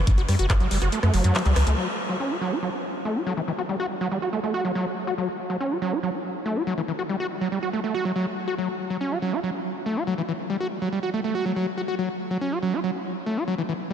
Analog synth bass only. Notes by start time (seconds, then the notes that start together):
0.18 F#1
0.29 F#2
0.39 F#1
0.60 F#1
0.71 F#1
0.82 F#1
1.03 F#2
1.14 F#1
1.24 F#2
1.46 C#2
1.56 C#2
1.67 C#2